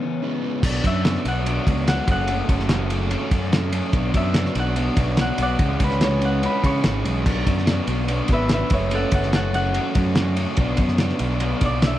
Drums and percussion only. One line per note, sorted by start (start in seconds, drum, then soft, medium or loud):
0.63 kick loud
0.63 crash loud
0.84 kick medium
0.84 ride medium
1.05 snare loud
1.05 ride loud
1.15 snare soft
1.25 ride medium
1.46 ride medium
1.67 kick medium
1.67 ride medium
1.88 snare loud
1.88 ride loud
2.08 kick loud
2.08 ride medium
2.28 ride medium
2.49 kick medium
2.49 ride medium
2.60 snare soft
2.69 snare loud
2.69 ride medium
2.90 ride medium
3.11 ride medium
3.31 kick medium
3.31 ride medium
3.53 snare loud
3.53 ride loud
3.73 ride medium
3.93 kick loud
3.93 ride loud
4.14 kick medium
4.14 ride medium
4.34 snare loud
4.34 ride loud
4.46 snare soft
4.55 ride medium
4.76 ride loud
4.97 kick medium
4.97 ride medium
5.17 snare loud
5.17 ride loud
5.38 ride medium
5.59 kick loud
5.59 ride medium
5.80 kick medium
5.80 ride medium
5.91 snare soft
6.01 snare loud
6.01 ride loud
6.21 ride medium
6.43 ride medium
6.64 kick medium
6.64 ride medium
6.84 snare loud
6.84 ride medium
7.05 ride medium
7.26 kick loud
7.26 crash medium
7.47 kick medium
7.47 ride medium
7.58 snare soft
7.67 snare loud
7.67 ride loud
7.87 ride medium
8.08 ride medium
8.28 kick medium
8.28 ride medium
8.49 snare loud
8.49 ride loud
8.70 kick loud
8.70 ride medium
8.91 ride loud
9.12 kick medium
9.12 ride medium
9.23 snare soft
9.33 snare loud
9.33 ride medium
9.54 ride medium
9.74 ride medium
9.95 kick medium
9.95 ride medium
10.15 snare loud
10.15 ride medium
10.37 ride medium
10.57 kick loud
10.57 ride medium
10.77 kick medium
10.77 ride medium
10.88 snare soft
10.98 snare loud
10.98 ride medium
11.09 snare soft
11.19 ride medium
11.40 ride medium
11.61 kick medium
11.61 ride medium
11.82 snare loud
11.82 ride loud